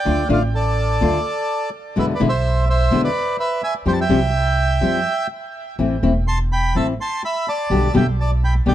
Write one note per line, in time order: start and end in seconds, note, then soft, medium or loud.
0.00 0.28 D5 medium
0.00 0.28 G5 medium
0.05 0.26 D2 soft
0.05 0.22 D3 medium
0.05 0.22 A3 medium
0.05 0.22 D4 medium
0.05 0.23 F4 medium
0.29 0.97 A1 medium
0.29 0.38 D3 medium
0.29 0.38 A3 medium
0.29 0.39 D4 medium
0.29 0.39 F4 medium
0.29 0.42 D5 medium
0.29 0.43 F5 medium
0.55 1.69 A4 medium
0.55 1.70 D5 medium
1.01 1.21 D2 medium
1.01 1.18 D3 medium
1.01 1.18 A3 medium
1.01 1.18 D4 medium
1.01 1.18 F4 medium
1.96 2.17 E2 medium
1.96 2.13 B2 medium
1.96 2.13 D3 medium
1.96 2.13 G#3 medium
1.96 2.13 B3 medium
1.96 2.13 E4 medium
1.96 2.06 B4 medium
1.96 2.06 E5 medium
2.15 2.21 B4 soft
2.15 2.21 D5 medium
2.20 2.87 B1 medium
2.20 2.29 B2 medium
2.20 2.29 D3 medium
2.20 2.29 G#3 medium
2.20 2.29 B3 medium
2.20 2.29 E4 medium
2.29 2.65 C5 medium
2.29 2.68 E5 medium
2.69 3.01 C5 medium
2.69 3.02 E5 medium
2.91 3.11 E2 medium
2.91 3.08 B2 medium
2.91 3.08 D3 medium
2.91 3.08 G#3 medium
2.91 3.08 B3 medium
2.91 3.08 E4 medium
3.04 3.36 B4 medium
3.04 3.37 D5 medium
3.40 3.61 B4 medium
3.40 3.62 E5 medium
3.64 3.74 E5 medium
3.64 3.74 G#5 medium
3.86 4.06 F2 medium
3.86 4.02 F3 medium
3.86 4.02 G3 soft
3.86 4.03 C4 medium
3.86 4.03 G4 medium
3.86 3.93 C5 medium
3.86 3.93 G5 medium
3.93 4.00 A5 medium
4.01 5.27 E5 medium
4.01 5.27 G5 medium
4.09 4.78 C2 medium
4.09 4.18 F3 medium
4.09 4.18 G3 medium
4.09 4.19 C4 medium
4.09 4.19 G4 medium
4.81 5.02 F2 soft
4.81 4.98 F3 medium
4.81 4.98 G3 soft
4.81 4.99 C4 medium
4.81 4.99 G4 medium
5.79 5.99 A1 medium
5.79 5.96 E3 medium
5.79 5.96 A3 medium
5.79 5.96 C4 medium
5.79 5.96 E4 soft
6.03 6.72 E1 medium
6.03 6.12 E3 medium
6.03 6.12 A3 medium
6.03 6.12 C4 medium
6.03 6.12 E4 medium
6.28 6.39 A5 medium
6.28 6.38 C6 medium
6.52 6.75 G5 medium
6.52 6.76 B5 medium
6.75 6.95 A1 soft
6.75 6.92 E3 soft
6.75 6.92 A3 soft
6.75 6.92 C4 medium
6.75 6.93 E4 medium
6.75 6.87 E5 medium
6.75 6.87 A5 medium
7.01 7.22 A5 medium
7.01 7.22 C6 medium
7.25 7.46 E5 medium
7.25 7.48 B5 medium
7.48 7.92 D5 medium
7.48 7.96 A5 medium
7.70 7.90 B1 medium
7.70 7.87 B2 soft
7.70 7.87 D3 medium
7.70 7.87 G3 medium
7.70 7.87 B3 medium
7.70 7.87 G4 medium
7.94 8.62 B1 medium
7.94 8.03 B2 medium
7.94 8.03 D3 medium
7.94 8.03 G3 medium
7.94 8.03 B3 medium
7.94 8.03 G4 medium
7.94 8.07 E5 soft
7.94 8.06 G5 medium
8.20 8.31 D5 medium
8.20 8.31 A5 medium
8.44 8.54 G5 medium
8.44 8.54 B5 medium
8.66 8.75 B1 medium
8.66 8.75 B2 medium
8.66 8.75 D3 soft
8.66 8.75 G3 medium
8.66 8.75 B3 medium
8.66 8.75 G4 medium
8.66 8.75 D5 medium
8.66 8.75 G5 medium